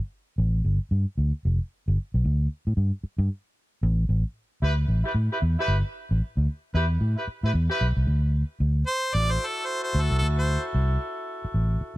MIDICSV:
0, 0, Header, 1, 5, 480
1, 0, Start_track
1, 0, Tempo, 530973
1, 1548, Time_signature, 4, 2, 24, 8
1, 10825, End_track
2, 0, Start_track
2, 0, Title_t, "Harmonica"
2, 0, Program_c, 0, 22
2, 8017, Note_on_c, 0, 72, 100
2, 8265, Note_on_c, 0, 74, 107
2, 8279, Note_off_c, 0, 72, 0
2, 8417, Note_on_c, 0, 72, 95
2, 8430, Note_off_c, 0, 74, 0
2, 8555, Note_on_c, 0, 69, 87
2, 8569, Note_off_c, 0, 72, 0
2, 8728, Note_on_c, 0, 72, 98
2, 8741, Note_off_c, 0, 69, 0
2, 8881, Note_off_c, 0, 72, 0
2, 8887, Note_on_c, 0, 72, 84
2, 9048, Note_on_c, 0, 69, 77
2, 9062, Note_off_c, 0, 72, 0
2, 9201, Note_off_c, 0, 69, 0
2, 9207, Note_on_c, 0, 69, 92
2, 9283, Note_off_c, 0, 69, 0
2, 9386, Note_on_c, 0, 72, 75
2, 9610, Note_off_c, 0, 72, 0
2, 10825, End_track
3, 0, Start_track
3, 0, Title_t, "Horn section"
3, 0, Program_c, 1, 61
3, 4180, Note_on_c, 1, 64, 90
3, 4180, Note_on_c, 1, 71, 101
3, 4184, Note_on_c, 1, 67, 86
3, 4273, Note_off_c, 1, 64, 0
3, 4273, Note_off_c, 1, 71, 0
3, 4276, Note_off_c, 1, 67, 0
3, 4555, Note_on_c, 1, 64, 78
3, 4561, Note_on_c, 1, 71, 86
3, 4567, Note_on_c, 1, 67, 81
3, 4620, Note_off_c, 1, 64, 0
3, 4624, Note_off_c, 1, 71, 0
3, 4628, Note_off_c, 1, 67, 0
3, 4813, Note_on_c, 1, 67, 78
3, 4815, Note_on_c, 1, 71, 88
3, 4820, Note_on_c, 1, 64, 85
3, 4872, Note_off_c, 1, 67, 0
3, 4874, Note_off_c, 1, 71, 0
3, 4878, Note_off_c, 1, 64, 0
3, 5051, Note_on_c, 1, 71, 104
3, 5052, Note_on_c, 1, 67, 99
3, 5056, Note_on_c, 1, 64, 93
3, 5203, Note_off_c, 1, 67, 0
3, 5203, Note_off_c, 1, 71, 0
3, 5206, Note_off_c, 1, 64, 0
3, 6100, Note_on_c, 1, 71, 99
3, 6103, Note_on_c, 1, 64, 88
3, 6107, Note_on_c, 1, 67, 97
3, 6192, Note_off_c, 1, 71, 0
3, 6195, Note_off_c, 1, 64, 0
3, 6197, Note_off_c, 1, 67, 0
3, 6478, Note_on_c, 1, 64, 80
3, 6478, Note_on_c, 1, 71, 88
3, 6482, Note_on_c, 1, 67, 76
3, 6542, Note_off_c, 1, 64, 0
3, 6542, Note_off_c, 1, 71, 0
3, 6545, Note_off_c, 1, 67, 0
3, 6724, Note_on_c, 1, 71, 97
3, 6727, Note_on_c, 1, 64, 85
3, 6728, Note_on_c, 1, 67, 82
3, 6787, Note_off_c, 1, 71, 0
3, 6788, Note_off_c, 1, 64, 0
3, 6789, Note_off_c, 1, 67, 0
3, 6958, Note_on_c, 1, 67, 109
3, 6960, Note_on_c, 1, 64, 96
3, 6962, Note_on_c, 1, 71, 111
3, 7114, Note_off_c, 1, 67, 0
3, 7115, Note_off_c, 1, 64, 0
3, 7117, Note_off_c, 1, 71, 0
3, 8269, Note_on_c, 1, 69, 95
3, 8274, Note_on_c, 1, 66, 85
3, 8279, Note_on_c, 1, 64, 84
3, 10825, Note_off_c, 1, 64, 0
3, 10825, Note_off_c, 1, 66, 0
3, 10825, Note_off_c, 1, 69, 0
3, 10825, End_track
4, 0, Start_track
4, 0, Title_t, "Fingered electric bass"
4, 0, Program_c, 2, 33
4, 345, Note_on_c, 2, 33, 98
4, 544, Note_off_c, 2, 33, 0
4, 582, Note_on_c, 2, 31, 86
4, 703, Note_off_c, 2, 31, 0
4, 823, Note_on_c, 2, 43, 77
4, 944, Note_off_c, 2, 43, 0
4, 1063, Note_on_c, 2, 38, 75
4, 1183, Note_off_c, 2, 38, 0
4, 1312, Note_on_c, 2, 29, 90
4, 1428, Note_off_c, 2, 29, 0
4, 1697, Note_on_c, 2, 31, 87
4, 1773, Note_off_c, 2, 31, 0
4, 1936, Note_on_c, 2, 35, 81
4, 2013, Note_off_c, 2, 35, 0
4, 2030, Note_on_c, 2, 38, 90
4, 2226, Note_off_c, 2, 38, 0
4, 2412, Note_on_c, 2, 45, 75
4, 2490, Note_off_c, 2, 45, 0
4, 2504, Note_on_c, 2, 43, 92
4, 2623, Note_off_c, 2, 43, 0
4, 2879, Note_on_c, 2, 43, 108
4, 2962, Note_off_c, 2, 43, 0
4, 3461, Note_on_c, 2, 33, 110
4, 3660, Note_off_c, 2, 33, 0
4, 3697, Note_on_c, 2, 33, 101
4, 3818, Note_off_c, 2, 33, 0
4, 4177, Note_on_c, 2, 38, 88
4, 4378, Note_off_c, 2, 38, 0
4, 4414, Note_on_c, 2, 33, 95
4, 4536, Note_off_c, 2, 33, 0
4, 4651, Note_on_c, 2, 45, 86
4, 4775, Note_off_c, 2, 45, 0
4, 4900, Note_on_c, 2, 40, 85
4, 5020, Note_off_c, 2, 40, 0
4, 5134, Note_on_c, 2, 31, 90
4, 5256, Note_off_c, 2, 31, 0
4, 5523, Note_on_c, 2, 33, 94
4, 5604, Note_off_c, 2, 33, 0
4, 5759, Note_on_c, 2, 38, 103
4, 5841, Note_off_c, 2, 38, 0
4, 6097, Note_on_c, 2, 40, 97
4, 6297, Note_off_c, 2, 40, 0
4, 6336, Note_on_c, 2, 45, 111
4, 6457, Note_off_c, 2, 45, 0
4, 6720, Note_on_c, 2, 45, 85
4, 6802, Note_off_c, 2, 45, 0
4, 6817, Note_on_c, 2, 40, 99
4, 6938, Note_off_c, 2, 40, 0
4, 7060, Note_on_c, 2, 35, 82
4, 7180, Note_off_c, 2, 35, 0
4, 7201, Note_on_c, 2, 36, 85
4, 7283, Note_off_c, 2, 36, 0
4, 7295, Note_on_c, 2, 38, 106
4, 7615, Note_off_c, 2, 38, 0
4, 7776, Note_on_c, 2, 38, 97
4, 7977, Note_off_c, 2, 38, 0
4, 8268, Note_on_c, 2, 33, 92
4, 8464, Note_off_c, 2, 33, 0
4, 8991, Note_on_c, 2, 38, 94
4, 9108, Note_off_c, 2, 38, 0
4, 9135, Note_on_c, 2, 36, 90
4, 9212, Note_off_c, 2, 36, 0
4, 9233, Note_on_c, 2, 38, 104
4, 9547, Note_off_c, 2, 38, 0
4, 9714, Note_on_c, 2, 36, 105
4, 9909, Note_off_c, 2, 36, 0
4, 10435, Note_on_c, 2, 33, 72
4, 10630, Note_off_c, 2, 33, 0
4, 10825, End_track
5, 0, Start_track
5, 0, Title_t, "Muted fingered electric bass strokes"
5, 2744, Note_on_c, 9, 29, 43
5, 2834, Note_off_c, 9, 29, 0
5, 6577, Note_on_c, 9, 29, 42
5, 6667, Note_off_c, 9, 29, 0
5, 10347, Note_on_c, 9, 29, 46
5, 10437, Note_off_c, 9, 29, 0
5, 10675, Note_on_c, 9, 29, 44
5, 10766, Note_off_c, 9, 29, 0
5, 10825, End_track
0, 0, End_of_file